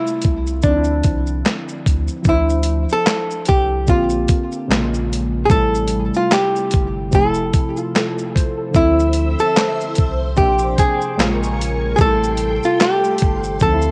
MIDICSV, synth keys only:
0, 0, Header, 1, 2, 480
1, 0, Start_track
1, 0, Key_signature, -1, "minor"
1, 0, Tempo, 810811
1, 1336, Time_signature, 4, 2, 24, 8
1, 8236, End_track
2, 0, Start_track
2, 0, Title_t, "Synth keys"
2, 0, Program_c, 0, 88
2, 0, Control_c, 0, 64, 127
2, 0, Note_on_c, 0, 48, 54
2, 0, Note_on_c, 0, 55, 51
2, 0, Note_on_c, 0, 57, 50
2, 0, Note_on_c, 0, 76, 62
2, 361, Note_off_c, 0, 55, 0
2, 368, Note_off_c, 0, 57, 0
2, 371, Note_on_c, 0, 50, 60
2, 373, Note_off_c, 0, 48, 0
2, 376, Note_off_c, 0, 76, 0
2, 383, Control_c, 0, 64, 0
2, 387, Note_on_c, 0, 53, 52
2, 399, Note_on_c, 0, 60, 56
2, 413, Note_on_c, 0, 63, 54
2, 440, Note_off_c, 0, 63, 0
2, 453, Note_on_c, 0, 64, 78
2, 481, Control_c, 0, 64, 127
2, 1310, Note_off_c, 0, 53, 0
2, 1314, Note_off_c, 0, 50, 0
2, 1317, Note_on_c, 0, 53, 55
2, 1328, Note_off_c, 0, 60, 0
2, 1332, Note_on_c, 0, 62, 51
2, 1340, Note_off_c, 0, 64, 0
2, 1343, Control_c, 0, 64, 0
2, 1347, Note_on_c, 0, 64, 57
2, 1360, Note_on_c, 0, 72, 62
2, 1435, Control_c, 0, 64, 127
2, 2267, Note_off_c, 0, 53, 0
2, 2275, Note_off_c, 0, 62, 0
2, 2282, Note_off_c, 0, 64, 0
2, 2285, Note_on_c, 0, 50, 59
2, 2289, Note_off_c, 0, 72, 0
2, 2294, Note_on_c, 0, 58, 58
2, 2300, Note_on_c, 0, 60, 60
2, 2303, Control_c, 0, 64, 0
2, 2308, Note_on_c, 0, 67, 61
2, 2412, Control_c, 0, 64, 127
2, 2766, Note_on_c, 0, 48, 58
2, 2771, Note_off_c, 0, 50, 0
2, 2773, Note_on_c, 0, 56, 65
2, 2775, Note_off_c, 0, 58, 0
2, 2778, Note_off_c, 0, 60, 0
2, 2781, Note_on_c, 0, 58, 73
2, 2782, Note_off_c, 0, 67, 0
2, 2783, Control_c, 0, 64, 0
2, 2788, Note_on_c, 0, 65, 75
2, 2807, Note_on_c, 0, 49, 76
2, 2816, Note_off_c, 0, 48, 0
2, 2904, Control_c, 0, 64, 127
2, 3235, Note_on_c, 0, 47, 53
2, 3249, Note_on_c, 0, 55, 75
2, 3255, Note_off_c, 0, 56, 0
2, 3258, Note_off_c, 0, 58, 0
2, 3262, Note_off_c, 0, 65, 0
2, 3264, Control_c, 0, 64, 0
2, 3264, Note_on_c, 0, 57, 66
2, 3271, Note_off_c, 0, 49, 0
2, 3272, Note_on_c, 0, 48, 69
2, 3275, Note_on_c, 0, 64, 78
2, 3291, Note_off_c, 0, 47, 0
2, 3356, Control_c, 0, 64, 127
2, 4193, Note_off_c, 0, 55, 0
2, 4201, Note_off_c, 0, 57, 0
2, 4202, Note_off_c, 0, 48, 0
2, 4206, Note_off_c, 0, 64, 0
2, 4209, Note_on_c, 0, 48, 70
2, 4222, Note_on_c, 0, 53, 60
2, 4225, Control_c, 0, 64, 0
2, 4237, Note_on_c, 0, 57, 68
2, 4251, Note_on_c, 0, 63, 65
2, 4279, Note_off_c, 0, 63, 0
2, 4290, Note_on_c, 0, 64, 88
2, 4320, Control_c, 0, 64, 127
2, 4489, Note_off_c, 0, 64, 0
2, 4606, Note_on_c, 0, 65, 65
2, 4696, Note_off_c, 0, 65, 0
2, 4709, Note_on_c, 0, 69, 74
2, 4931, Note_off_c, 0, 69, 0
2, 4944, Note_on_c, 0, 72, 69
2, 5075, Note_off_c, 0, 72, 0
2, 5077, Note_on_c, 0, 69, 64
2, 5153, Note_off_c, 0, 48, 0
2, 5155, Note_on_c, 0, 50, 52
2, 5160, Note_off_c, 0, 53, 0
2, 5167, Note_off_c, 0, 57, 0
2, 5168, Note_on_c, 0, 53, 54
2, 5184, Control_c, 0, 64, 0
2, 5185, Note_on_c, 0, 60, 58
2, 5199, Note_on_c, 0, 64, 67
2, 5277, Control_c, 0, 64, 127
2, 5306, Note_off_c, 0, 69, 0
2, 6106, Note_off_c, 0, 50, 0
2, 6112, Note_off_c, 0, 53, 0
2, 6121, Note_off_c, 0, 60, 0
2, 6128, Note_off_c, 0, 64, 0
2, 6131, Note_on_c, 0, 48, 61
2, 6141, Note_on_c, 0, 53, 56
2, 6143, Control_c, 0, 64, 0
2, 6146, Note_on_c, 0, 58, 55
2, 6154, Note_on_c, 0, 62, 71
2, 6258, Control_c, 0, 64, 127
2, 6607, Note_on_c, 0, 49, 79
2, 6613, Note_on_c, 0, 56, 75
2, 6614, Note_off_c, 0, 48, 0
2, 6615, Note_off_c, 0, 58, 0
2, 6618, Note_off_c, 0, 53, 0
2, 6622, Note_on_c, 0, 58, 77
2, 6625, Note_off_c, 0, 62, 0
2, 6625, Control_c, 0, 64, 0
2, 6627, Note_on_c, 0, 65, 82
2, 6733, Control_c, 0, 64, 127
2, 7092, Note_off_c, 0, 49, 0
2, 7092, Note_on_c, 0, 47, 46
2, 7095, Note_off_c, 0, 56, 0
2, 7099, Note_off_c, 0, 58, 0
2, 7102, Note_off_c, 0, 65, 0
2, 7103, Control_c, 0, 64, 0
2, 7104, Note_on_c, 0, 55, 54
2, 7121, Note_on_c, 0, 57, 53
2, 7128, Note_on_c, 0, 48, 56
2, 7135, Note_on_c, 0, 64, 69
2, 7139, Note_off_c, 0, 47, 0
2, 7196, Control_c, 0, 64, 127
2, 8041, Note_off_c, 0, 55, 0
2, 8050, Note_off_c, 0, 57, 0
2, 8053, Note_off_c, 0, 48, 0
2, 8053, Note_on_c, 0, 50, 56
2, 8057, Note_off_c, 0, 64, 0
2, 8064, Control_c, 0, 64, 0
2, 8069, Note_on_c, 0, 53, 60
2, 8082, Note_on_c, 0, 60, 53
2, 8097, Note_on_c, 0, 63, 56
2, 8122, Note_off_c, 0, 63, 0
2, 8133, Note_on_c, 0, 64, 74
2, 8161, Control_c, 0, 64, 127
2, 8236, Note_off_c, 0, 50, 0
2, 8236, Note_off_c, 0, 53, 0
2, 8236, Note_off_c, 0, 60, 0
2, 8236, Note_off_c, 0, 64, 0
2, 8236, End_track
0, 0, End_of_file